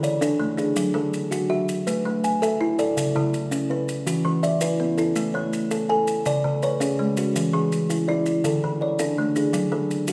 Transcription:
0.00 0.22 D3 medium
0.00 0.58 C#5 medium
0.00 0.59 D5 medium
0.00 maracas medium
0.21 0.58 D4 medium
0.21 0.56 D4 medium
0.21 0.77 A4 medium
0.21 maracas medium
0.40 0.77 A3 medium
0.57 1.13 D4 medium
0.57 0.95 G#4 medium
0.57 maracas medium
0.76 1.13 F#3 medium
0.76 maracas medium
0.94 1.31 F#3 medium
0.94 1.50 A4 medium
1.14 maracas medium
1.31 1.68 F#4 medium
1.31 maracas medium
1.50 1.87 F#4 medium
1.50 2.05 E5 medium
1.69 maracas medium
1.87 2.24 A3 medium
1.87 2.24 B4 medium
1.87 maracas medium
2.05 2.42 A3 medium
2.24 2.79 G#5 medium
2.24 maracas medium
2.42 2.79 A4 medium
2.42 2.78 A4 medium
2.42 2.97 E5 medium
2.42 maracas medium
2.61 2.97 E4 medium
2.79 3.34 A4 medium
2.79 3.15 D5 medium
2.79 maracas medium
2.97 3.33 C#3 medium
2.97 maracas medium
3.15 3.52 C#3 medium
3.15 3.70 E4 medium
3.34 maracas medium
3.51 3.88 C#4 medium
3.51 maracas medium
3.70 4.07 C#4 medium
3.70 4.25 B4 medium
3.89 maracas medium
4.06 4.43 E3 medium
4.06 4.43 F#4 medium
4.06 maracas medium
4.25 4.61 E3 medium
4.43 4.98 D5 medium
4.43 4.98 E5 medium
4.43 maracas medium
4.61 4.98 E4 medium
4.61 4.97 E4 medium
4.61 5.16 B4 medium
4.61 maracas medium
4.80 5.16 B3 medium
4.98 5.53 E4 medium
4.98 5.34 A4 medium
4.98 maracas medium
5.16 5.53 A3 medium
5.16 maracas medium
5.34 5.71 A3 medium
5.34 5.89 C#5 medium
5.53 maracas medium
5.71 6.08 A4 medium
5.71 maracas medium
5.89 6.26 A4 medium
5.89 6.44 G#5 medium
6.08 maracas medium
6.26 6.62 C#3 medium
6.26 6.63 D5 medium
6.26 maracas medium
6.44 6.81 C#3 medium
6.63 7.17 B4 medium
6.63 7.18 C#5 medium
6.63 maracas medium
6.80 7.17 C#4 medium
6.80 7.35 G#4 medium
6.80 maracas medium
6.99 7.35 G#3 medium
7.17 7.72 C#4 medium
7.17 7.54 F#4 medium
7.17 maracas medium
7.36 7.72 E3 medium
7.36 maracas medium
7.53 7.90 E3 medium
7.53 8.08 G#4 medium
7.72 maracas medium
7.90 8.26 E4 medium
7.90 maracas medium
8.08 8.45 E4 medium
8.08 8.63 D5 medium
8.26 maracas medium
8.44 8.81 D3 medium
8.44 8.81 A4 medium
8.44 maracas medium
8.64 9.00 D3 medium
8.81 9.36 C#5 medium
8.81 9.36 D5 medium
8.99 9.36 D4 medium
8.99 9.35 D4 medium
8.99 9.54 A4 medium
8.99 maracas medium
9.18 9.55 A3 medium
9.36 9.91 D4 medium
9.36 9.73 G#4 medium
9.36 maracas medium
9.53 9.90 F#3 medium
9.53 maracas medium
9.72 10.09 F#3 medium
9.72 10.13 A4 medium
9.91 maracas medium
10.08 10.13 F#4 medium
10.08 maracas medium

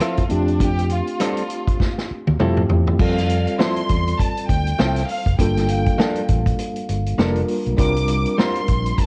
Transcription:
0.00 0.22 F3 medium
0.00 0.26 A3 medium
0.00 0.26 C4 medium
0.00 0.22 C4 medium
0.00 0.27 D4 soft
0.00 0.23 E4 medium
0.00 0.27 F4 medium
0.00 0.23 A4 medium
0.00 0.27 E5 soft
0.00 cross-stick loud
0.00 closed hi-hat medium
0.17 kick medium
0.17 cross-stick soft
0.17 closed hi-hat medium
0.29 1.00 F2 medium
0.29 2.35 A3 medium
0.29 2.35 C4 medium
0.29 2.36 D4 soft
0.29 0.59 D4 medium
0.29 2.36 F4 medium
0.29 2.36 G4 medium
0.29 closed hi-hat medium
0.48 closed hi-hat soft
0.60 0.91 G4 medium
0.60 kick medium
0.60 closed hi-hat medium
0.79 cross-stick soft
0.79 closed hi-hat soft
0.90 2.06 F4 medium
0.90 closed hi-hat medium
1.07 closed hi-hat soft
1.20 1.42 G3 medium
1.20 1.42 C4 medium
1.20 1.42 D4 medium
1.20 1.42 A4 medium
1.20 cross-stick loud
1.20 closed hi-hat medium
1.37 closed hi-hat soft
1.50 closed hi-hat medium
1.68 kick medium
1.68 closed hi-hat soft
1.80 kick medium
1.80 snare medium
1.98 snare soft
2.11 muted fingered electric bass stroke soft
2.27 2.37 D2 medium
2.27 high tom medium
2.40 2.63 F2 medium
2.40 2.61 G3 medium
2.40 2.99 A3 medium
2.40 2.98 C4 medium
2.40 2.62 C4 medium
2.40 3.00 E4 medium
2.40 2.62 E4 medium
2.40 2.99 F4 medium
2.40 3.00 G4 medium
2.40 2.62 A4 medium
2.40 mid tom medium
2.57 mid tom medium
2.70 2.93 E2 medium
2.70 floor tom medium
2.87 floor tom medium
2.99 3.46 F2 medium
2.99 5.34 G3 medium
2.99 5.35 C4 medium
2.99 5.35 F4 medium
2.99 5.36 A4 medium
2.99 4.69 D5 medium
2.99 3.56 F5 medium
2.99 kick loud
2.99 crash medium
3.18 snare soft
3.18 closed hi-hat soft
3.29 closed hi-hat medium
3.47 closed hi-hat soft
3.59 3.81 F3 medium
3.59 3.81 C4 medium
3.59 3.81 E4 medium
3.59 3.82 A4 medium
3.59 4.16 C6 loud
3.59 snare loud
3.76 closed hi-hat medium
3.89 4.13 E2 medium
3.89 kick medium
3.89 closed hi-hat medium
4.07 closed hi-hat soft
4.19 4.49 A5 medium
4.19 kick medium
4.19 closed hi-hat medium
4.37 closed hi-hat medium
4.49 4.72 D2 medium
4.49 5.05 G5 loud
4.49 kick medium
4.49 closed hi-hat medium
4.67 closed hi-hat soft
4.79 5.03 C2 medium
4.79 5.01 F3 medium
4.79 5.01 C4 medium
4.79 5.01 E4 medium
4.79 5.01 A4 medium
4.79 snare loud
4.96 snare soft
4.96 closed hi-hat medium
5.08 5.39 F5 medium
5.08 open hi-hat medium
5.26 5.36 F#1 medium
5.26 kick medium
5.26 closed hi-hat soft
5.38 5.85 G1 medium
5.38 7.14 G3 medium
5.38 7.15 A#3 medium
5.38 7.15 D4 medium
5.38 7.16 F4 medium
5.38 7.16 A4 medium
5.38 6.25 G5 medium
5.38 kick loud
5.38 closed hi-hat medium
5.57 snare soft
5.57 closed hi-hat medium
5.68 7.38 F5 medium
5.68 closed hi-hat medium
5.86 kick medium
5.86 closed hi-hat soft
5.98 6.20 F3 medium
5.98 6.20 A#3 medium
5.98 6.21 D4 medium
5.98 6.21 A4 medium
5.98 snare loud
6.15 closed hi-hat medium
6.28 6.52 A1 medium
6.28 kick medium
6.28 closed hi-hat medium
6.46 kick loud
6.46 closed hi-hat soft
6.58 closed hi-hat medium
6.76 closed hi-hat soft
6.89 7.12 G1 medium
6.89 closed hi-hat medium
7.06 closed hi-hat soft
7.18 7.42 F1 medium
7.18 7.40 F3 medium
7.18 7.76 G3 medium
7.18 7.78 A#3 soft
7.18 7.40 A#3 medium
7.18 7.78 D4 medium
7.18 7.41 D4 medium
7.18 7.78 F4 medium
7.18 7.41 A4 medium
7.18 7.78 A#4 medium
7.18 snare loud
7.35 closed hi-hat medium
7.48 open hi-hat medium
7.66 7.76 B1 medium
7.66 closed hi-hat soft
7.78 8.25 C2 medium
7.78 9.06 G3 medium
7.78 9.06 C4 medium
7.78 9.06 D4 medium
7.78 9.06 F4 medium
7.78 9.06 A#4 medium
7.78 8.35 D6 loud
7.78 kick loud
7.78 closed hi-hat medium
7.96 closed hi-hat medium
8.08 9.06 A#4 medium
8.08 closed hi-hat medium
8.25 closed hi-hat soft
8.38 8.60 G3 medium
8.38 8.60 C4 medium
8.38 8.60 F4 medium
8.38 8.60 A#4 medium
8.38 8.99 C6 loud
8.38 snare loud
8.55 closed hi-hat medium
8.68 8.92 A#1 medium
8.68 kick medium
8.68 closed hi-hat medium
8.86 closed hi-hat medium
8.98 9.06 A5 loud
8.98 kick medium
8.98 closed hi-hat medium

